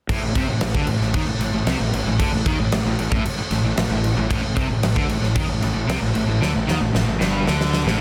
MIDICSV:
0, 0, Header, 1, 6, 480
1, 0, Start_track
1, 0, Key_signature, 0, "minor"
1, 0, Tempo, 526316
1, 82, Time_signature, 4, 2, 24, 8
1, 7304, End_track
2, 0, Start_track
2, 0, Title_t, "Distorted electric guitar"
2, 0, Program_c, 0, 30
2, 84, Note_on_c, 0, 45, 112
2, 196, Note_off_c, 0, 45, 0
2, 213, Note_on_c, 0, 45, 72
2, 324, Note_off_c, 0, 45, 0
2, 328, Note_on_c, 0, 48, 102
2, 438, Note_off_c, 0, 48, 0
2, 451, Note_on_c, 0, 45, 78
2, 559, Note_off_c, 0, 45, 0
2, 570, Note_on_c, 0, 45, 67
2, 682, Note_off_c, 0, 45, 0
2, 686, Note_on_c, 0, 50, 97
2, 797, Note_off_c, 0, 50, 0
2, 812, Note_on_c, 0, 45, 75
2, 922, Note_off_c, 0, 45, 0
2, 933, Note_on_c, 0, 45, 71
2, 1040, Note_off_c, 0, 45, 0
2, 1044, Note_on_c, 0, 51, 116
2, 1155, Note_off_c, 0, 51, 0
2, 1158, Note_on_c, 0, 45, 71
2, 1263, Note_off_c, 0, 45, 0
2, 1274, Note_on_c, 0, 45, 69
2, 1389, Note_off_c, 0, 45, 0
2, 1400, Note_on_c, 0, 45, 66
2, 1513, Note_off_c, 0, 45, 0
2, 1516, Note_on_c, 0, 48, 101
2, 1632, Note_off_c, 0, 48, 0
2, 1637, Note_on_c, 0, 45, 77
2, 1753, Note_off_c, 0, 45, 0
2, 1764, Note_on_c, 0, 45, 79
2, 1871, Note_off_c, 0, 45, 0
2, 1882, Note_on_c, 0, 45, 72
2, 1995, Note_off_c, 0, 45, 0
2, 1998, Note_on_c, 0, 50, 96
2, 2113, Note_off_c, 0, 50, 0
2, 2125, Note_on_c, 0, 45, 78
2, 2240, Note_off_c, 0, 45, 0
2, 2243, Note_on_c, 0, 51, 110
2, 2356, Note_off_c, 0, 51, 0
2, 2369, Note_on_c, 0, 45, 79
2, 2482, Note_off_c, 0, 45, 0
2, 2493, Note_on_c, 0, 45, 73
2, 2595, Note_off_c, 0, 45, 0
2, 2606, Note_on_c, 0, 45, 74
2, 2713, Note_off_c, 0, 45, 0
2, 2724, Note_on_c, 0, 45, 73
2, 2824, Note_off_c, 0, 45, 0
2, 2834, Note_on_c, 0, 45, 96
2, 2950, Note_off_c, 0, 45, 0
2, 3200, Note_on_c, 0, 45, 74
2, 3313, Note_off_c, 0, 45, 0
2, 3324, Note_on_c, 0, 45, 65
2, 3432, Note_off_c, 0, 45, 0
2, 3443, Note_on_c, 0, 45, 72
2, 3553, Note_off_c, 0, 45, 0
2, 3564, Note_on_c, 0, 45, 79
2, 3756, Note_off_c, 0, 45, 0
2, 3804, Note_on_c, 0, 45, 72
2, 3905, Note_off_c, 0, 45, 0
2, 3915, Note_on_c, 0, 45, 112
2, 4022, Note_off_c, 0, 45, 0
2, 4032, Note_on_c, 0, 45, 81
2, 4142, Note_off_c, 0, 45, 0
2, 4146, Note_on_c, 0, 48, 111
2, 4267, Note_off_c, 0, 48, 0
2, 4274, Note_on_c, 0, 45, 73
2, 4390, Note_off_c, 0, 45, 0
2, 4401, Note_on_c, 0, 45, 69
2, 4511, Note_off_c, 0, 45, 0
2, 4515, Note_on_c, 0, 50, 92
2, 4632, Note_off_c, 0, 50, 0
2, 4639, Note_on_c, 0, 45, 72
2, 4750, Note_off_c, 0, 45, 0
2, 4761, Note_on_c, 0, 45, 73
2, 4875, Note_off_c, 0, 45, 0
2, 4879, Note_on_c, 0, 51, 107
2, 4993, Note_off_c, 0, 51, 0
2, 4997, Note_on_c, 0, 45, 79
2, 5108, Note_off_c, 0, 45, 0
2, 5119, Note_on_c, 0, 45, 72
2, 5224, Note_off_c, 0, 45, 0
2, 5235, Note_on_c, 0, 45, 65
2, 5350, Note_off_c, 0, 45, 0
2, 5354, Note_on_c, 0, 48, 96
2, 5471, Note_off_c, 0, 48, 0
2, 5479, Note_on_c, 0, 45, 78
2, 5582, Note_off_c, 0, 45, 0
2, 5593, Note_on_c, 0, 45, 79
2, 5708, Note_off_c, 0, 45, 0
2, 5719, Note_on_c, 0, 45, 72
2, 5838, Note_off_c, 0, 45, 0
2, 5842, Note_on_c, 0, 50, 104
2, 5955, Note_off_c, 0, 50, 0
2, 5959, Note_on_c, 0, 45, 78
2, 6079, Note_off_c, 0, 45, 0
2, 6083, Note_on_c, 0, 51, 104
2, 6196, Note_off_c, 0, 51, 0
2, 6209, Note_on_c, 0, 45, 73
2, 6312, Note_off_c, 0, 45, 0
2, 6323, Note_on_c, 0, 45, 73
2, 6414, Note_off_c, 0, 45, 0
2, 6425, Note_on_c, 0, 45, 71
2, 6552, Note_on_c, 0, 43, 97
2, 6554, Note_off_c, 0, 45, 0
2, 6791, Note_off_c, 0, 43, 0
2, 6799, Note_on_c, 0, 50, 101
2, 7149, Note_off_c, 0, 50, 0
2, 7153, Note_on_c, 0, 45, 99
2, 7269, Note_off_c, 0, 45, 0
2, 7273, Note_on_c, 0, 50, 96
2, 7304, Note_off_c, 0, 50, 0
2, 7304, End_track
3, 0, Start_track
3, 0, Title_t, "Fingered electric bass"
3, 0, Program_c, 1, 33
3, 82, Note_on_c, 1, 33, 102
3, 194, Note_off_c, 1, 33, 0
3, 206, Note_on_c, 1, 33, 74
3, 316, Note_off_c, 1, 33, 0
3, 320, Note_on_c, 1, 36, 101
3, 433, Note_off_c, 1, 36, 0
3, 437, Note_on_c, 1, 33, 90
3, 551, Note_off_c, 1, 33, 0
3, 557, Note_on_c, 1, 33, 79
3, 671, Note_off_c, 1, 33, 0
3, 680, Note_on_c, 1, 38, 92
3, 791, Note_off_c, 1, 38, 0
3, 796, Note_on_c, 1, 33, 76
3, 909, Note_off_c, 1, 33, 0
3, 914, Note_on_c, 1, 33, 83
3, 1030, Note_off_c, 1, 33, 0
3, 1042, Note_on_c, 1, 39, 95
3, 1138, Note_off_c, 1, 39, 0
3, 1144, Note_on_c, 1, 33, 78
3, 1260, Note_off_c, 1, 33, 0
3, 1265, Note_on_c, 1, 33, 81
3, 1385, Note_off_c, 1, 33, 0
3, 1397, Note_on_c, 1, 33, 79
3, 1511, Note_off_c, 1, 33, 0
3, 1516, Note_on_c, 1, 36, 91
3, 1631, Note_off_c, 1, 36, 0
3, 1642, Note_on_c, 1, 33, 85
3, 1754, Note_off_c, 1, 33, 0
3, 1760, Note_on_c, 1, 33, 81
3, 1868, Note_off_c, 1, 33, 0
3, 1873, Note_on_c, 1, 33, 81
3, 1989, Note_off_c, 1, 33, 0
3, 2007, Note_on_c, 1, 38, 98
3, 2109, Note_off_c, 1, 38, 0
3, 2114, Note_on_c, 1, 33, 80
3, 2230, Note_off_c, 1, 33, 0
3, 2241, Note_on_c, 1, 39, 91
3, 2354, Note_off_c, 1, 39, 0
3, 2368, Note_on_c, 1, 33, 86
3, 2478, Note_off_c, 1, 33, 0
3, 2486, Note_on_c, 1, 33, 79
3, 2596, Note_off_c, 1, 33, 0
3, 2602, Note_on_c, 1, 33, 91
3, 2714, Note_off_c, 1, 33, 0
3, 2723, Note_on_c, 1, 33, 73
3, 2835, Note_off_c, 1, 33, 0
3, 2840, Note_on_c, 1, 33, 100
3, 2953, Note_off_c, 1, 33, 0
3, 3196, Note_on_c, 1, 33, 79
3, 3311, Note_off_c, 1, 33, 0
3, 3315, Note_on_c, 1, 33, 83
3, 3430, Note_off_c, 1, 33, 0
3, 3440, Note_on_c, 1, 33, 76
3, 3545, Note_off_c, 1, 33, 0
3, 3551, Note_on_c, 1, 33, 85
3, 3780, Note_off_c, 1, 33, 0
3, 3801, Note_on_c, 1, 33, 88
3, 3914, Note_off_c, 1, 33, 0
3, 3929, Note_on_c, 1, 33, 106
3, 4038, Note_off_c, 1, 33, 0
3, 4044, Note_on_c, 1, 33, 71
3, 4155, Note_off_c, 1, 33, 0
3, 4163, Note_on_c, 1, 36, 97
3, 4275, Note_off_c, 1, 36, 0
3, 4294, Note_on_c, 1, 33, 85
3, 4401, Note_off_c, 1, 33, 0
3, 4409, Note_on_c, 1, 33, 79
3, 4518, Note_off_c, 1, 33, 0
3, 4522, Note_on_c, 1, 38, 103
3, 4629, Note_off_c, 1, 38, 0
3, 4635, Note_on_c, 1, 33, 85
3, 4750, Note_off_c, 1, 33, 0
3, 4761, Note_on_c, 1, 33, 84
3, 4873, Note_off_c, 1, 33, 0
3, 4887, Note_on_c, 1, 39, 94
3, 4997, Note_off_c, 1, 39, 0
3, 5011, Note_on_c, 1, 33, 83
3, 5119, Note_off_c, 1, 33, 0
3, 5133, Note_on_c, 1, 33, 78
3, 5240, Note_off_c, 1, 33, 0
3, 5255, Note_on_c, 1, 33, 80
3, 5361, Note_off_c, 1, 33, 0
3, 5366, Note_on_c, 1, 36, 89
3, 5476, Note_off_c, 1, 36, 0
3, 5490, Note_on_c, 1, 33, 87
3, 5598, Note_off_c, 1, 33, 0
3, 5615, Note_on_c, 1, 33, 80
3, 5721, Note_off_c, 1, 33, 0
3, 5726, Note_on_c, 1, 33, 81
3, 5836, Note_off_c, 1, 33, 0
3, 5857, Note_on_c, 1, 38, 101
3, 5962, Note_off_c, 1, 38, 0
3, 5982, Note_on_c, 1, 33, 78
3, 6085, Note_off_c, 1, 33, 0
3, 6096, Note_on_c, 1, 39, 88
3, 6202, Note_off_c, 1, 39, 0
3, 6210, Note_on_c, 1, 33, 87
3, 6318, Note_off_c, 1, 33, 0
3, 6332, Note_on_c, 1, 33, 82
3, 6440, Note_off_c, 1, 33, 0
3, 6453, Note_on_c, 1, 33, 80
3, 6560, Note_off_c, 1, 33, 0
3, 6569, Note_on_c, 1, 31, 86
3, 6789, Note_off_c, 1, 31, 0
3, 6816, Note_on_c, 1, 38, 99
3, 7145, Note_off_c, 1, 38, 0
3, 7166, Note_on_c, 1, 33, 88
3, 7277, Note_off_c, 1, 33, 0
3, 7304, End_track
4, 0, Start_track
4, 0, Title_t, "Muted distorted electric guitar strokes"
4, 2961, Note_on_c, 9, 29, 59
4, 3052, Note_off_c, 9, 29, 0
4, 3082, Note_on_c, 9, 29, 65
4, 3173, Note_off_c, 9, 29, 0
4, 7304, End_track
5, 0, Start_track
5, 0, Title_t, "Muted fingered electric bass strokes"
5, 2965, Note_on_c, 9, 29, 42
5, 3057, Note_off_c, 9, 29, 0
5, 3087, Note_on_c, 9, 29, 41
5, 3178, Note_off_c, 9, 29, 0
5, 7304, End_track
6, 0, Start_track
6, 0, Title_t, "Drums"
6, 84, Note_on_c, 9, 36, 101
6, 84, Note_on_c, 9, 49, 87
6, 175, Note_off_c, 9, 36, 0
6, 175, Note_off_c, 9, 49, 0
6, 323, Note_on_c, 9, 36, 102
6, 323, Note_on_c, 9, 49, 58
6, 415, Note_off_c, 9, 36, 0
6, 415, Note_off_c, 9, 49, 0
6, 554, Note_on_c, 9, 49, 84
6, 558, Note_on_c, 9, 38, 115
6, 646, Note_off_c, 9, 49, 0
6, 649, Note_off_c, 9, 38, 0
6, 680, Note_on_c, 9, 36, 107
6, 771, Note_off_c, 9, 36, 0
6, 792, Note_on_c, 9, 49, 61
6, 883, Note_off_c, 9, 49, 0
6, 924, Note_on_c, 9, 38, 32
6, 1015, Note_off_c, 9, 38, 0
6, 1039, Note_on_c, 9, 49, 83
6, 1041, Note_on_c, 9, 36, 103
6, 1130, Note_off_c, 9, 49, 0
6, 1133, Note_off_c, 9, 36, 0
6, 1282, Note_on_c, 9, 49, 60
6, 1286, Note_on_c, 9, 38, 31
6, 1374, Note_off_c, 9, 49, 0
6, 1377, Note_off_c, 9, 38, 0
6, 1520, Note_on_c, 9, 49, 82
6, 1524, Note_on_c, 9, 38, 114
6, 1612, Note_off_c, 9, 49, 0
6, 1615, Note_off_c, 9, 38, 0
6, 1765, Note_on_c, 9, 49, 62
6, 1856, Note_off_c, 9, 49, 0
6, 2002, Note_on_c, 9, 49, 81
6, 2003, Note_on_c, 9, 36, 100
6, 2093, Note_off_c, 9, 49, 0
6, 2094, Note_off_c, 9, 36, 0
6, 2243, Note_on_c, 9, 36, 107
6, 2243, Note_on_c, 9, 49, 62
6, 2334, Note_off_c, 9, 36, 0
6, 2334, Note_off_c, 9, 49, 0
6, 2482, Note_on_c, 9, 49, 73
6, 2485, Note_on_c, 9, 38, 110
6, 2573, Note_off_c, 9, 49, 0
6, 2576, Note_off_c, 9, 38, 0
6, 2725, Note_on_c, 9, 49, 60
6, 2816, Note_off_c, 9, 49, 0
6, 2843, Note_on_c, 9, 36, 107
6, 2935, Note_off_c, 9, 36, 0
6, 2969, Note_on_c, 9, 49, 80
6, 3060, Note_off_c, 9, 49, 0
6, 3199, Note_on_c, 9, 49, 52
6, 3202, Note_on_c, 9, 38, 33
6, 3290, Note_off_c, 9, 49, 0
6, 3294, Note_off_c, 9, 38, 0
6, 3442, Note_on_c, 9, 49, 78
6, 3445, Note_on_c, 9, 38, 115
6, 3533, Note_off_c, 9, 49, 0
6, 3537, Note_off_c, 9, 38, 0
6, 3684, Note_on_c, 9, 49, 53
6, 3775, Note_off_c, 9, 49, 0
6, 3927, Note_on_c, 9, 36, 110
6, 3930, Note_on_c, 9, 49, 78
6, 4018, Note_off_c, 9, 36, 0
6, 4021, Note_off_c, 9, 49, 0
6, 4162, Note_on_c, 9, 49, 64
6, 4165, Note_on_c, 9, 36, 101
6, 4254, Note_off_c, 9, 49, 0
6, 4256, Note_off_c, 9, 36, 0
6, 4405, Note_on_c, 9, 49, 85
6, 4409, Note_on_c, 9, 38, 110
6, 4496, Note_off_c, 9, 49, 0
6, 4500, Note_off_c, 9, 38, 0
6, 4525, Note_on_c, 9, 36, 104
6, 4616, Note_off_c, 9, 36, 0
6, 4646, Note_on_c, 9, 49, 61
6, 4737, Note_off_c, 9, 49, 0
6, 4772, Note_on_c, 9, 38, 31
6, 4863, Note_off_c, 9, 38, 0
6, 4885, Note_on_c, 9, 49, 83
6, 4886, Note_on_c, 9, 36, 115
6, 4976, Note_off_c, 9, 49, 0
6, 4977, Note_off_c, 9, 36, 0
6, 5128, Note_on_c, 9, 49, 62
6, 5132, Note_on_c, 9, 38, 32
6, 5220, Note_off_c, 9, 49, 0
6, 5223, Note_off_c, 9, 38, 0
6, 5375, Note_on_c, 9, 49, 90
6, 5379, Note_on_c, 9, 38, 109
6, 5467, Note_off_c, 9, 49, 0
6, 5470, Note_off_c, 9, 38, 0
6, 5608, Note_on_c, 9, 49, 65
6, 5700, Note_off_c, 9, 49, 0
6, 5858, Note_on_c, 9, 38, 68
6, 5949, Note_off_c, 9, 38, 0
6, 6096, Note_on_c, 9, 38, 68
6, 6187, Note_off_c, 9, 38, 0
6, 6336, Note_on_c, 9, 38, 76
6, 6428, Note_off_c, 9, 38, 0
6, 6575, Note_on_c, 9, 38, 79
6, 6666, Note_off_c, 9, 38, 0
6, 6816, Note_on_c, 9, 38, 84
6, 6908, Note_off_c, 9, 38, 0
6, 6937, Note_on_c, 9, 38, 82
6, 7029, Note_off_c, 9, 38, 0
6, 7054, Note_on_c, 9, 38, 90
6, 7145, Note_off_c, 9, 38, 0
6, 7184, Note_on_c, 9, 38, 84
6, 7275, Note_off_c, 9, 38, 0
6, 7304, End_track
0, 0, End_of_file